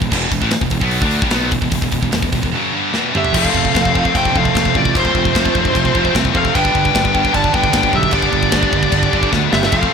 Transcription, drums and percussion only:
0.02 kick medium
0.12 kick loud
0.12 crash loud
0.32 kick medium
0.32 open hi-hat soft
0.42 kick medium
0.51 snare loud
0.51 open hi-hat medium
0.61 kick loud
0.70 kick medium
0.70 open hi-hat medium
0.81 kick medium
0.91 open hi-hat medium
1.02 kick loud
1.11 open hi-hat medium
1.22 kick loud
1.31 snare loud
1.31 open hi-hat medium
1.51 kick medium
1.51 open hi-hat medium
1.62 kick medium
1.72 kick loud
1.72 open hi-hat medium
1.82 kick medium
1.92 kick medium
1.92 open hi-hat medium
2.03 kick medium
2.12 snare medium
2.12 open hi-hat medium
2.23 kick medium
2.32 kick loud
2.32 open hi-hat medium
2.43 kick medium
2.94 snare medium
3.15 mid tom medium
3.25 floor tom medium
3.34 kick loud
3.34 crash loud
3.34 crash medium
3.45 kick medium
3.55 kick medium
3.65 kick medium
3.75 kick medium
3.75 snare loud
3.75 crash medium
3.85 kick medium
3.95 kick medium
4.05 kick medium
4.15 kick medium
4.15 crash medium
4.25 kick medium
4.36 kick medium
4.45 kick medium
4.55 kick medium
4.55 snare loud
4.55 crash medium
4.65 kick medium
4.75 kick medium
4.85 kick medium
4.95 kick loud
4.95 crash medium
5.05 kick medium
5.15 kick medium
5.25 kick medium
5.35 kick medium
5.35 snare loud
5.35 crash medium
5.45 kick medium
5.55 kick loud
5.65 kick medium
5.75 kick loud
5.75 crash medium
5.85 kick medium
5.95 kick medium
6.05 kick medium
6.15 kick medium
6.15 snare loud
6.15 crash medium
6.25 kick medium
6.35 kick medium
6.45 kick medium
6.55 kick loud
6.55 crash medium
6.65 kick loud
6.75 kick medium
6.85 kick medium
6.95 kick medium
6.95 snare loud
6.95 crash medium
7.05 kick loud
7.15 kick loud
7.25 kick medium
7.34 kick loud
7.34 crash medium
7.44 kick medium
7.54 kick medium
7.64 kick medium
7.73 kick medium
7.73 snare loud
7.73 crash medium
7.83 kick medium
7.93 kick medium
8.03 kick medium
8.11 kick loud
8.11 crash medium
8.22 kick medium
8.33 kick medium
8.43 kick medium
8.52 kick medium
8.52 snare loud
8.52 crash medium
8.63 kick medium
8.73 kick medium
8.83 kick medium
8.92 kick loud
8.92 crash medium
9.03 kick medium
9.13 kick medium
9.23 kick medium
9.33 kick medium
9.33 snare medium
9.53 snare medium
9.63 snare loud
9.72 kick loud
9.72 crash medium
9.83 kick medium

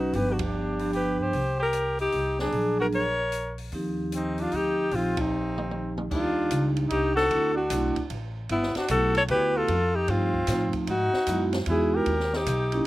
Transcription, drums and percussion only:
0.13 kick soft
0.13 open hi-hat soft
0.39 kick medium
0.39 ride medium
0.79 open hi-hat soft
0.93 open hi-hat soft
1.33 kick soft
1.33 open hi-hat soft
1.73 closed hi-hat soft
1.99 open hi-hat soft
2.12 open hi-hat soft
2.39 snare soft
2.52 kick soft
2.52 open hi-hat soft
2.92 open hi-hat soft
3.32 closed hi-hat soft
3.58 open hi-hat soft
3.72 kick soft
3.72 open hi-hat soft
4.12 closed hi-hat soft
4.38 open hi-hat soft
4.52 open hi-hat soft
4.91 kick soft
4.91 open hi-hat soft
5.17 kick medium
5.17 ride medium
5.58 mid tom medium
5.71 mid tom soft
5.98 mid tom medium
6.11 kick medium
6.11 crash medium
6.51 kick soft
6.51 hi-hat pedal medium
6.51 ride medium
6.77 ride soft
6.90 kick soft
6.90 ride medium
7.17 snare soft
7.31 kick soft
7.31 ride medium
7.70 kick soft
7.70 hi-hat pedal medium
7.70 ride medium
7.96 kick medium
7.96 ride soft
8.10 kick soft
8.10 ride medium
8.49 kick soft
8.49 ride medium
8.63 snare soft
8.75 snare soft
8.75 ride soft
8.88 kick soft
8.88 hi-hat pedal soft
8.88 ride medium
9.15 ride soft
9.28 kick soft
9.28 ride medium
9.68 kick soft
9.68 ride medium
10.08 kick soft
10.08 ride medium
10.34 kick soft
10.47 snare soft
10.47 hi-hat pedal medium
10.47 ride medium
10.73 kick soft
10.73 ride soft
10.87 kick soft
10.87 ride medium
11.13 snare soft
11.27 kick soft
11.27 hi-hat pedal medium
11.27 ride medium
11.53 snare medium
11.53 ride soft
11.66 kick soft
11.66 ride medium
12.06 kick soft
12.06 ride medium
12.20 snare soft
12.33 snare soft
12.46 kick soft
12.46 hi-hat pedal medium
12.46 ride medium
12.72 ride soft

